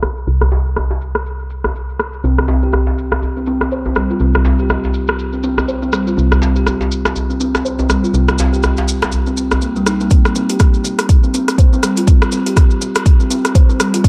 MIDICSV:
0, 0, Header, 1, 5, 480
1, 0, Start_track
1, 0, Tempo, 491803
1, 267, Time_signature, 4, 2, 24, 8
1, 13748, End_track
2, 0, Start_track
2, 0, Title_t, "Kalimba"
2, 0, Program_c, 0, 108
2, 2188, Note_on_c, 0, 60, 92
2, 2313, Note_off_c, 0, 60, 0
2, 2426, Note_on_c, 0, 60, 89
2, 2501, Note_off_c, 0, 60, 0
2, 2567, Note_on_c, 0, 67, 74
2, 2658, Note_off_c, 0, 67, 0
2, 3288, Note_on_c, 0, 60, 74
2, 3376, Note_off_c, 0, 60, 0
2, 3388, Note_on_c, 0, 60, 101
2, 3462, Note_off_c, 0, 60, 0
2, 3629, Note_on_c, 0, 72, 77
2, 3753, Note_off_c, 0, 72, 0
2, 3765, Note_on_c, 0, 60, 92
2, 3820, Note_off_c, 0, 60, 0
2, 3868, Note_on_c, 0, 55, 68
2, 3943, Note_off_c, 0, 55, 0
2, 4002, Note_on_c, 0, 65, 71
2, 4100, Note_off_c, 0, 65, 0
2, 4105, Note_on_c, 0, 60, 98
2, 4231, Note_off_c, 0, 60, 0
2, 4345, Note_on_c, 0, 60, 88
2, 4421, Note_off_c, 0, 60, 0
2, 4485, Note_on_c, 0, 67, 74
2, 4577, Note_off_c, 0, 67, 0
2, 5205, Note_on_c, 0, 60, 70
2, 5293, Note_off_c, 0, 60, 0
2, 5305, Note_on_c, 0, 60, 98
2, 5381, Note_off_c, 0, 60, 0
2, 5545, Note_on_c, 0, 72, 80
2, 5671, Note_off_c, 0, 72, 0
2, 5683, Note_on_c, 0, 60, 96
2, 5739, Note_off_c, 0, 60, 0
2, 5787, Note_on_c, 0, 55, 73
2, 5862, Note_off_c, 0, 55, 0
2, 5923, Note_on_c, 0, 65, 72
2, 6020, Note_off_c, 0, 65, 0
2, 6022, Note_on_c, 0, 60, 96
2, 6150, Note_off_c, 0, 60, 0
2, 6262, Note_on_c, 0, 60, 91
2, 6340, Note_off_c, 0, 60, 0
2, 6400, Note_on_c, 0, 67, 74
2, 6494, Note_off_c, 0, 67, 0
2, 7124, Note_on_c, 0, 60, 74
2, 7216, Note_off_c, 0, 60, 0
2, 7227, Note_on_c, 0, 60, 105
2, 7302, Note_off_c, 0, 60, 0
2, 7465, Note_on_c, 0, 72, 80
2, 7591, Note_off_c, 0, 72, 0
2, 7607, Note_on_c, 0, 60, 99
2, 7661, Note_off_c, 0, 60, 0
2, 7709, Note_on_c, 0, 55, 75
2, 7783, Note_off_c, 0, 55, 0
2, 7845, Note_on_c, 0, 65, 72
2, 7942, Note_off_c, 0, 65, 0
2, 7945, Note_on_c, 0, 60, 94
2, 8071, Note_off_c, 0, 60, 0
2, 8186, Note_on_c, 0, 60, 96
2, 8262, Note_off_c, 0, 60, 0
2, 8324, Note_on_c, 0, 67, 76
2, 8416, Note_off_c, 0, 67, 0
2, 9047, Note_on_c, 0, 60, 76
2, 9135, Note_off_c, 0, 60, 0
2, 9146, Note_on_c, 0, 60, 78
2, 9222, Note_off_c, 0, 60, 0
2, 9387, Note_on_c, 0, 58, 77
2, 9512, Note_off_c, 0, 58, 0
2, 9527, Note_on_c, 0, 55, 91
2, 9618, Note_off_c, 0, 55, 0
2, 9629, Note_on_c, 0, 63, 96
2, 9760, Note_off_c, 0, 63, 0
2, 9766, Note_on_c, 0, 58, 94
2, 9821, Note_off_c, 0, 58, 0
2, 9868, Note_on_c, 0, 60, 94
2, 9993, Note_off_c, 0, 60, 0
2, 10106, Note_on_c, 0, 60, 92
2, 10182, Note_off_c, 0, 60, 0
2, 10246, Note_on_c, 0, 67, 74
2, 10337, Note_off_c, 0, 67, 0
2, 10966, Note_on_c, 0, 60, 79
2, 11057, Note_off_c, 0, 60, 0
2, 11069, Note_on_c, 0, 60, 98
2, 11143, Note_off_c, 0, 60, 0
2, 11307, Note_on_c, 0, 72, 80
2, 11432, Note_off_c, 0, 72, 0
2, 11447, Note_on_c, 0, 60, 103
2, 11501, Note_off_c, 0, 60, 0
2, 11547, Note_on_c, 0, 55, 73
2, 11622, Note_off_c, 0, 55, 0
2, 11684, Note_on_c, 0, 65, 71
2, 11781, Note_off_c, 0, 65, 0
2, 11786, Note_on_c, 0, 60, 103
2, 11912, Note_off_c, 0, 60, 0
2, 12025, Note_on_c, 0, 60, 92
2, 12101, Note_off_c, 0, 60, 0
2, 12164, Note_on_c, 0, 67, 76
2, 12256, Note_off_c, 0, 67, 0
2, 12883, Note_on_c, 0, 60, 76
2, 12976, Note_off_c, 0, 60, 0
2, 12986, Note_on_c, 0, 60, 103
2, 13062, Note_off_c, 0, 60, 0
2, 13224, Note_on_c, 0, 72, 84
2, 13351, Note_off_c, 0, 72, 0
2, 13363, Note_on_c, 0, 60, 96
2, 13419, Note_off_c, 0, 60, 0
2, 13466, Note_on_c, 0, 55, 78
2, 13542, Note_off_c, 0, 55, 0
2, 13604, Note_on_c, 0, 65, 72
2, 13701, Note_off_c, 0, 65, 0
2, 13705, Note_on_c, 0, 60, 101
2, 13748, Note_off_c, 0, 60, 0
2, 13748, End_track
3, 0, Start_track
3, 0, Title_t, "FM bass"
3, 0, Program_c, 1, 39
3, 0, Note_on_c, 1, 36, 82
3, 246, Note_off_c, 1, 36, 0
3, 267, Note_on_c, 1, 36, 90
3, 2167, Note_off_c, 1, 36, 0
3, 2186, Note_on_c, 1, 36, 91
3, 4086, Note_off_c, 1, 36, 0
3, 4103, Note_on_c, 1, 36, 91
3, 6005, Note_off_c, 1, 36, 0
3, 6030, Note_on_c, 1, 36, 87
3, 7928, Note_off_c, 1, 36, 0
3, 7944, Note_on_c, 1, 36, 89
3, 9846, Note_off_c, 1, 36, 0
3, 13748, End_track
4, 0, Start_track
4, 0, Title_t, "Djembe"
4, 28, Note_on_c, 9, 63, 83
4, 126, Note_off_c, 9, 63, 0
4, 401, Note_on_c, 9, 63, 75
4, 498, Note_off_c, 9, 63, 0
4, 505, Note_on_c, 9, 62, 94
4, 603, Note_off_c, 9, 62, 0
4, 754, Note_on_c, 9, 63, 91
4, 852, Note_off_c, 9, 63, 0
4, 885, Note_on_c, 9, 62, 69
4, 982, Note_off_c, 9, 62, 0
4, 1606, Note_on_c, 9, 63, 81
4, 1704, Note_off_c, 9, 63, 0
4, 2324, Note_on_c, 9, 63, 72
4, 2421, Note_off_c, 9, 63, 0
4, 2421, Note_on_c, 9, 62, 99
4, 2519, Note_off_c, 9, 62, 0
4, 2661, Note_on_c, 9, 63, 91
4, 2759, Note_off_c, 9, 63, 0
4, 2800, Note_on_c, 9, 62, 65
4, 2897, Note_off_c, 9, 62, 0
4, 3041, Note_on_c, 9, 62, 73
4, 3138, Note_off_c, 9, 62, 0
4, 3145, Note_on_c, 9, 63, 54
4, 3243, Note_off_c, 9, 63, 0
4, 3521, Note_on_c, 9, 62, 59
4, 3619, Note_off_c, 9, 62, 0
4, 3766, Note_on_c, 9, 63, 79
4, 3863, Note_off_c, 9, 63, 0
4, 3865, Note_on_c, 9, 63, 67
4, 3963, Note_off_c, 9, 63, 0
4, 4247, Note_on_c, 9, 63, 68
4, 4341, Note_on_c, 9, 62, 95
4, 4344, Note_off_c, 9, 63, 0
4, 4438, Note_off_c, 9, 62, 0
4, 4585, Note_on_c, 9, 63, 87
4, 4683, Note_off_c, 9, 63, 0
4, 4731, Note_on_c, 9, 62, 66
4, 4829, Note_off_c, 9, 62, 0
4, 5441, Note_on_c, 9, 63, 77
4, 5538, Note_off_c, 9, 63, 0
4, 6162, Note_on_c, 9, 63, 72
4, 6260, Note_off_c, 9, 63, 0
4, 6263, Note_on_c, 9, 62, 89
4, 6361, Note_off_c, 9, 62, 0
4, 6513, Note_on_c, 9, 63, 91
4, 6610, Note_off_c, 9, 63, 0
4, 6644, Note_on_c, 9, 62, 71
4, 6742, Note_off_c, 9, 62, 0
4, 6887, Note_on_c, 9, 62, 72
4, 6984, Note_on_c, 9, 63, 54
4, 6985, Note_off_c, 9, 62, 0
4, 7081, Note_off_c, 9, 63, 0
4, 7367, Note_on_c, 9, 62, 65
4, 7465, Note_off_c, 9, 62, 0
4, 7602, Note_on_c, 9, 63, 67
4, 7700, Note_off_c, 9, 63, 0
4, 7709, Note_on_c, 9, 63, 72
4, 7807, Note_off_c, 9, 63, 0
4, 8082, Note_on_c, 9, 63, 76
4, 8180, Note_off_c, 9, 63, 0
4, 8198, Note_on_c, 9, 62, 100
4, 8295, Note_off_c, 9, 62, 0
4, 8439, Note_on_c, 9, 63, 83
4, 8537, Note_off_c, 9, 63, 0
4, 8571, Note_on_c, 9, 62, 79
4, 8668, Note_off_c, 9, 62, 0
4, 8805, Note_on_c, 9, 62, 79
4, 8903, Note_off_c, 9, 62, 0
4, 8915, Note_on_c, 9, 63, 59
4, 9012, Note_off_c, 9, 63, 0
4, 9293, Note_on_c, 9, 63, 79
4, 9391, Note_off_c, 9, 63, 0
4, 13748, End_track
5, 0, Start_track
5, 0, Title_t, "Drums"
5, 23, Note_on_c, 9, 70, 93
5, 25, Note_on_c, 9, 37, 91
5, 120, Note_off_c, 9, 70, 0
5, 123, Note_off_c, 9, 37, 0
5, 168, Note_on_c, 9, 70, 34
5, 265, Note_off_c, 9, 70, 0
5, 267, Note_on_c, 9, 70, 52
5, 364, Note_off_c, 9, 70, 0
5, 405, Note_on_c, 9, 37, 93
5, 405, Note_on_c, 9, 70, 25
5, 498, Note_off_c, 9, 70, 0
5, 498, Note_on_c, 9, 70, 91
5, 502, Note_off_c, 9, 37, 0
5, 596, Note_off_c, 9, 70, 0
5, 646, Note_on_c, 9, 70, 35
5, 743, Note_off_c, 9, 70, 0
5, 746, Note_on_c, 9, 37, 72
5, 747, Note_on_c, 9, 70, 49
5, 844, Note_off_c, 9, 37, 0
5, 845, Note_off_c, 9, 70, 0
5, 888, Note_on_c, 9, 70, 26
5, 986, Note_off_c, 9, 70, 0
5, 988, Note_on_c, 9, 70, 93
5, 1086, Note_off_c, 9, 70, 0
5, 1123, Note_on_c, 9, 37, 91
5, 1123, Note_on_c, 9, 70, 34
5, 1220, Note_off_c, 9, 37, 0
5, 1220, Note_off_c, 9, 70, 0
5, 1229, Note_on_c, 9, 70, 56
5, 1326, Note_off_c, 9, 70, 0
5, 1363, Note_on_c, 9, 70, 22
5, 1460, Note_off_c, 9, 70, 0
5, 1465, Note_on_c, 9, 70, 91
5, 1562, Note_off_c, 9, 70, 0
5, 1604, Note_on_c, 9, 37, 77
5, 1606, Note_on_c, 9, 70, 40
5, 1702, Note_off_c, 9, 37, 0
5, 1704, Note_off_c, 9, 70, 0
5, 1711, Note_on_c, 9, 70, 49
5, 1809, Note_off_c, 9, 70, 0
5, 1848, Note_on_c, 9, 70, 26
5, 1946, Note_off_c, 9, 70, 0
5, 1946, Note_on_c, 9, 70, 89
5, 1947, Note_on_c, 9, 37, 89
5, 2044, Note_off_c, 9, 70, 0
5, 2045, Note_off_c, 9, 37, 0
5, 2079, Note_on_c, 9, 70, 36
5, 2177, Note_off_c, 9, 70, 0
5, 2184, Note_on_c, 9, 70, 45
5, 2282, Note_off_c, 9, 70, 0
5, 2323, Note_on_c, 9, 70, 25
5, 2327, Note_on_c, 9, 37, 85
5, 2419, Note_off_c, 9, 70, 0
5, 2419, Note_on_c, 9, 70, 82
5, 2424, Note_off_c, 9, 37, 0
5, 2516, Note_off_c, 9, 70, 0
5, 2559, Note_on_c, 9, 70, 40
5, 2656, Note_off_c, 9, 70, 0
5, 2657, Note_on_c, 9, 70, 50
5, 2668, Note_on_c, 9, 37, 70
5, 2754, Note_off_c, 9, 70, 0
5, 2766, Note_off_c, 9, 37, 0
5, 2802, Note_on_c, 9, 70, 24
5, 2900, Note_off_c, 9, 70, 0
5, 2910, Note_on_c, 9, 70, 93
5, 3007, Note_off_c, 9, 70, 0
5, 3040, Note_on_c, 9, 70, 37
5, 3045, Note_on_c, 9, 37, 88
5, 3138, Note_off_c, 9, 70, 0
5, 3142, Note_off_c, 9, 37, 0
5, 3147, Note_on_c, 9, 70, 48
5, 3245, Note_off_c, 9, 70, 0
5, 3286, Note_on_c, 9, 70, 24
5, 3379, Note_off_c, 9, 70, 0
5, 3379, Note_on_c, 9, 70, 85
5, 3476, Note_off_c, 9, 70, 0
5, 3524, Note_on_c, 9, 70, 38
5, 3525, Note_on_c, 9, 37, 73
5, 3622, Note_off_c, 9, 37, 0
5, 3622, Note_off_c, 9, 70, 0
5, 3625, Note_on_c, 9, 70, 53
5, 3723, Note_off_c, 9, 70, 0
5, 3758, Note_on_c, 9, 70, 23
5, 3856, Note_off_c, 9, 70, 0
5, 3857, Note_on_c, 9, 70, 91
5, 3866, Note_on_c, 9, 37, 89
5, 3954, Note_off_c, 9, 70, 0
5, 3963, Note_off_c, 9, 37, 0
5, 4003, Note_on_c, 9, 70, 37
5, 4094, Note_off_c, 9, 70, 0
5, 4094, Note_on_c, 9, 70, 46
5, 4191, Note_off_c, 9, 70, 0
5, 4232, Note_on_c, 9, 70, 23
5, 4245, Note_on_c, 9, 37, 88
5, 4329, Note_off_c, 9, 70, 0
5, 4340, Note_on_c, 9, 70, 76
5, 4343, Note_off_c, 9, 37, 0
5, 4438, Note_off_c, 9, 70, 0
5, 4478, Note_on_c, 9, 70, 35
5, 4576, Note_off_c, 9, 70, 0
5, 4581, Note_on_c, 9, 70, 54
5, 4587, Note_on_c, 9, 37, 72
5, 4679, Note_off_c, 9, 70, 0
5, 4685, Note_off_c, 9, 37, 0
5, 4721, Note_on_c, 9, 70, 26
5, 4818, Note_off_c, 9, 70, 0
5, 4819, Note_on_c, 9, 70, 82
5, 4917, Note_off_c, 9, 70, 0
5, 4952, Note_on_c, 9, 70, 35
5, 4966, Note_on_c, 9, 37, 91
5, 5050, Note_off_c, 9, 70, 0
5, 5064, Note_off_c, 9, 37, 0
5, 5065, Note_on_c, 9, 70, 53
5, 5163, Note_off_c, 9, 70, 0
5, 5199, Note_on_c, 9, 70, 24
5, 5296, Note_off_c, 9, 70, 0
5, 5301, Note_on_c, 9, 70, 72
5, 5398, Note_off_c, 9, 70, 0
5, 5446, Note_on_c, 9, 37, 72
5, 5450, Note_on_c, 9, 70, 34
5, 5543, Note_off_c, 9, 37, 0
5, 5547, Note_off_c, 9, 70, 0
5, 5547, Note_on_c, 9, 70, 47
5, 5645, Note_off_c, 9, 70, 0
5, 5685, Note_on_c, 9, 70, 22
5, 5783, Note_off_c, 9, 70, 0
5, 5783, Note_on_c, 9, 70, 92
5, 5787, Note_on_c, 9, 37, 85
5, 5880, Note_off_c, 9, 70, 0
5, 5885, Note_off_c, 9, 37, 0
5, 5926, Note_on_c, 9, 70, 37
5, 6024, Note_off_c, 9, 70, 0
5, 6035, Note_on_c, 9, 70, 47
5, 6133, Note_off_c, 9, 70, 0
5, 6167, Note_on_c, 9, 37, 85
5, 6169, Note_on_c, 9, 70, 25
5, 6264, Note_off_c, 9, 37, 0
5, 6267, Note_off_c, 9, 70, 0
5, 6270, Note_on_c, 9, 70, 79
5, 6368, Note_off_c, 9, 70, 0
5, 6401, Note_on_c, 9, 70, 35
5, 6499, Note_off_c, 9, 70, 0
5, 6505, Note_on_c, 9, 37, 74
5, 6507, Note_on_c, 9, 70, 48
5, 6603, Note_off_c, 9, 37, 0
5, 6605, Note_off_c, 9, 70, 0
5, 6651, Note_on_c, 9, 70, 22
5, 6749, Note_off_c, 9, 70, 0
5, 6749, Note_on_c, 9, 70, 80
5, 6847, Note_off_c, 9, 70, 0
5, 6884, Note_on_c, 9, 37, 89
5, 6887, Note_on_c, 9, 70, 38
5, 6982, Note_off_c, 9, 37, 0
5, 6984, Note_off_c, 9, 70, 0
5, 6986, Note_on_c, 9, 70, 52
5, 7083, Note_off_c, 9, 70, 0
5, 7126, Note_on_c, 9, 70, 20
5, 7224, Note_off_c, 9, 70, 0
5, 7226, Note_on_c, 9, 70, 78
5, 7323, Note_off_c, 9, 70, 0
5, 7366, Note_on_c, 9, 37, 69
5, 7368, Note_on_c, 9, 70, 36
5, 7464, Note_off_c, 9, 37, 0
5, 7466, Note_off_c, 9, 70, 0
5, 7473, Note_on_c, 9, 70, 46
5, 7570, Note_off_c, 9, 70, 0
5, 7603, Note_on_c, 9, 70, 25
5, 7700, Note_off_c, 9, 70, 0
5, 7705, Note_on_c, 9, 70, 82
5, 7707, Note_on_c, 9, 37, 79
5, 7803, Note_off_c, 9, 70, 0
5, 7805, Note_off_c, 9, 37, 0
5, 7852, Note_on_c, 9, 70, 33
5, 7946, Note_off_c, 9, 70, 0
5, 7946, Note_on_c, 9, 70, 51
5, 8043, Note_off_c, 9, 70, 0
5, 8084, Note_on_c, 9, 70, 24
5, 8086, Note_on_c, 9, 37, 90
5, 8181, Note_off_c, 9, 70, 0
5, 8184, Note_off_c, 9, 37, 0
5, 8184, Note_on_c, 9, 70, 85
5, 8281, Note_off_c, 9, 70, 0
5, 8331, Note_on_c, 9, 70, 33
5, 8421, Note_off_c, 9, 70, 0
5, 8421, Note_on_c, 9, 70, 49
5, 8429, Note_on_c, 9, 37, 74
5, 8519, Note_off_c, 9, 70, 0
5, 8527, Note_off_c, 9, 37, 0
5, 8559, Note_on_c, 9, 70, 25
5, 8657, Note_off_c, 9, 70, 0
5, 8668, Note_on_c, 9, 70, 82
5, 8766, Note_off_c, 9, 70, 0
5, 8807, Note_on_c, 9, 70, 32
5, 8808, Note_on_c, 9, 37, 88
5, 8899, Note_off_c, 9, 70, 0
5, 8899, Note_on_c, 9, 70, 45
5, 8906, Note_off_c, 9, 37, 0
5, 8997, Note_off_c, 9, 70, 0
5, 9042, Note_on_c, 9, 70, 23
5, 9140, Note_off_c, 9, 70, 0
5, 9146, Note_on_c, 9, 70, 87
5, 9243, Note_off_c, 9, 70, 0
5, 9284, Note_on_c, 9, 70, 33
5, 9286, Note_on_c, 9, 37, 73
5, 9381, Note_off_c, 9, 70, 0
5, 9384, Note_off_c, 9, 37, 0
5, 9385, Note_on_c, 9, 70, 51
5, 9483, Note_off_c, 9, 70, 0
5, 9526, Note_on_c, 9, 70, 21
5, 9623, Note_off_c, 9, 70, 0
5, 9628, Note_on_c, 9, 37, 81
5, 9628, Note_on_c, 9, 70, 96
5, 9725, Note_off_c, 9, 37, 0
5, 9726, Note_off_c, 9, 70, 0
5, 9764, Note_on_c, 9, 70, 35
5, 9861, Note_off_c, 9, 70, 0
5, 9861, Note_on_c, 9, 70, 51
5, 9865, Note_on_c, 9, 36, 113
5, 9868, Note_on_c, 9, 42, 55
5, 9958, Note_off_c, 9, 70, 0
5, 9963, Note_off_c, 9, 36, 0
5, 9966, Note_off_c, 9, 42, 0
5, 10007, Note_on_c, 9, 37, 88
5, 10009, Note_on_c, 9, 70, 26
5, 10104, Note_off_c, 9, 37, 0
5, 10106, Note_off_c, 9, 70, 0
5, 10106, Note_on_c, 9, 70, 85
5, 10107, Note_on_c, 9, 47, 84
5, 10203, Note_off_c, 9, 70, 0
5, 10204, Note_off_c, 9, 47, 0
5, 10242, Note_on_c, 9, 70, 36
5, 10244, Note_on_c, 9, 42, 48
5, 10340, Note_off_c, 9, 70, 0
5, 10341, Note_off_c, 9, 42, 0
5, 10341, Note_on_c, 9, 70, 59
5, 10344, Note_on_c, 9, 37, 75
5, 10344, Note_on_c, 9, 42, 57
5, 10345, Note_on_c, 9, 36, 109
5, 10439, Note_off_c, 9, 70, 0
5, 10442, Note_off_c, 9, 36, 0
5, 10442, Note_off_c, 9, 37, 0
5, 10442, Note_off_c, 9, 42, 0
5, 10481, Note_on_c, 9, 70, 27
5, 10579, Note_off_c, 9, 70, 0
5, 10584, Note_on_c, 9, 47, 76
5, 10586, Note_on_c, 9, 70, 98
5, 10682, Note_off_c, 9, 47, 0
5, 10684, Note_off_c, 9, 70, 0
5, 10724, Note_on_c, 9, 37, 90
5, 10724, Note_on_c, 9, 42, 50
5, 10726, Note_on_c, 9, 70, 39
5, 10821, Note_off_c, 9, 37, 0
5, 10821, Note_off_c, 9, 42, 0
5, 10824, Note_off_c, 9, 70, 0
5, 10824, Note_on_c, 9, 42, 53
5, 10825, Note_on_c, 9, 36, 112
5, 10828, Note_on_c, 9, 70, 49
5, 10922, Note_off_c, 9, 42, 0
5, 10923, Note_off_c, 9, 36, 0
5, 10925, Note_off_c, 9, 70, 0
5, 10965, Note_on_c, 9, 70, 24
5, 11063, Note_off_c, 9, 70, 0
5, 11067, Note_on_c, 9, 42, 32
5, 11071, Note_on_c, 9, 70, 88
5, 11165, Note_off_c, 9, 42, 0
5, 11168, Note_off_c, 9, 70, 0
5, 11206, Note_on_c, 9, 37, 74
5, 11206, Note_on_c, 9, 42, 46
5, 11215, Note_on_c, 9, 70, 39
5, 11303, Note_off_c, 9, 37, 0
5, 11303, Note_off_c, 9, 42, 0
5, 11304, Note_on_c, 9, 36, 118
5, 11307, Note_on_c, 9, 42, 55
5, 11312, Note_off_c, 9, 70, 0
5, 11315, Note_on_c, 9, 70, 51
5, 11402, Note_off_c, 9, 36, 0
5, 11404, Note_off_c, 9, 42, 0
5, 11413, Note_off_c, 9, 70, 0
5, 11450, Note_on_c, 9, 70, 25
5, 11546, Note_on_c, 9, 37, 85
5, 11546, Note_on_c, 9, 42, 43
5, 11547, Note_off_c, 9, 70, 0
5, 11547, Note_on_c, 9, 70, 95
5, 11643, Note_off_c, 9, 37, 0
5, 11643, Note_off_c, 9, 42, 0
5, 11645, Note_off_c, 9, 70, 0
5, 11678, Note_on_c, 9, 70, 37
5, 11686, Note_on_c, 9, 42, 54
5, 11775, Note_off_c, 9, 70, 0
5, 11784, Note_off_c, 9, 42, 0
5, 11784, Note_on_c, 9, 36, 121
5, 11784, Note_on_c, 9, 70, 55
5, 11787, Note_on_c, 9, 42, 58
5, 11881, Note_off_c, 9, 36, 0
5, 11881, Note_off_c, 9, 70, 0
5, 11884, Note_off_c, 9, 42, 0
5, 11926, Note_on_c, 9, 37, 98
5, 11931, Note_on_c, 9, 70, 25
5, 12023, Note_off_c, 9, 37, 0
5, 12023, Note_off_c, 9, 70, 0
5, 12023, Note_on_c, 9, 70, 94
5, 12120, Note_off_c, 9, 70, 0
5, 12165, Note_on_c, 9, 42, 47
5, 12166, Note_on_c, 9, 70, 39
5, 12263, Note_off_c, 9, 42, 0
5, 12263, Note_off_c, 9, 70, 0
5, 12264, Note_on_c, 9, 36, 122
5, 12264, Note_on_c, 9, 70, 59
5, 12267, Note_on_c, 9, 37, 80
5, 12267, Note_on_c, 9, 42, 58
5, 12361, Note_off_c, 9, 70, 0
5, 12362, Note_off_c, 9, 36, 0
5, 12364, Note_off_c, 9, 37, 0
5, 12364, Note_off_c, 9, 42, 0
5, 12401, Note_on_c, 9, 70, 28
5, 12499, Note_off_c, 9, 70, 0
5, 12506, Note_on_c, 9, 47, 80
5, 12508, Note_on_c, 9, 70, 88
5, 12604, Note_off_c, 9, 47, 0
5, 12606, Note_off_c, 9, 70, 0
5, 12642, Note_on_c, 9, 70, 42
5, 12646, Note_on_c, 9, 37, 99
5, 12646, Note_on_c, 9, 42, 48
5, 12739, Note_off_c, 9, 70, 0
5, 12743, Note_off_c, 9, 37, 0
5, 12743, Note_off_c, 9, 42, 0
5, 12744, Note_on_c, 9, 36, 120
5, 12745, Note_on_c, 9, 70, 50
5, 12746, Note_on_c, 9, 42, 56
5, 12842, Note_off_c, 9, 36, 0
5, 12843, Note_off_c, 9, 70, 0
5, 12844, Note_off_c, 9, 42, 0
5, 12885, Note_on_c, 9, 70, 28
5, 12983, Note_off_c, 9, 70, 0
5, 12985, Note_on_c, 9, 42, 31
5, 12989, Note_on_c, 9, 70, 93
5, 13083, Note_off_c, 9, 42, 0
5, 13086, Note_off_c, 9, 70, 0
5, 13126, Note_on_c, 9, 37, 76
5, 13126, Note_on_c, 9, 42, 45
5, 13135, Note_on_c, 9, 70, 43
5, 13223, Note_off_c, 9, 37, 0
5, 13223, Note_off_c, 9, 42, 0
5, 13225, Note_off_c, 9, 70, 0
5, 13225, Note_on_c, 9, 36, 124
5, 13225, Note_on_c, 9, 70, 55
5, 13228, Note_on_c, 9, 42, 59
5, 13322, Note_off_c, 9, 36, 0
5, 13323, Note_off_c, 9, 70, 0
5, 13325, Note_off_c, 9, 42, 0
5, 13367, Note_on_c, 9, 70, 25
5, 13465, Note_off_c, 9, 70, 0
5, 13468, Note_on_c, 9, 37, 94
5, 13468, Note_on_c, 9, 42, 44
5, 13469, Note_on_c, 9, 70, 100
5, 13565, Note_off_c, 9, 37, 0
5, 13565, Note_off_c, 9, 42, 0
5, 13567, Note_off_c, 9, 70, 0
5, 13605, Note_on_c, 9, 42, 57
5, 13605, Note_on_c, 9, 47, 82
5, 13613, Note_on_c, 9, 70, 39
5, 13702, Note_off_c, 9, 42, 0
5, 13702, Note_off_c, 9, 47, 0
5, 13705, Note_on_c, 9, 36, 127
5, 13707, Note_on_c, 9, 42, 56
5, 13708, Note_off_c, 9, 70, 0
5, 13708, Note_on_c, 9, 70, 51
5, 13748, Note_off_c, 9, 36, 0
5, 13748, Note_off_c, 9, 42, 0
5, 13748, Note_off_c, 9, 70, 0
5, 13748, End_track
0, 0, End_of_file